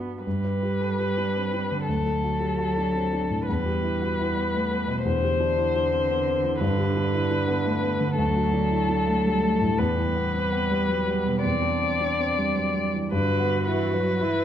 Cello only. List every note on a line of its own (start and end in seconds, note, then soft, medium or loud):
0.00 0.24 B3 soft
0.26 1.89 G3 soft
1.88 3.46 F#3 medium
3.47 5.05 G3 soft
5.03 8.18 D3 medium
8.18 9.75 F#3 medium
9.78 11.40 G3 medium
11.45 12.89 C4 soft
13.12 13.69 D3 medium
13.68 13.96 E3 medium
13.94 14.23 F#3 medium
14.22 14.45 E3 medium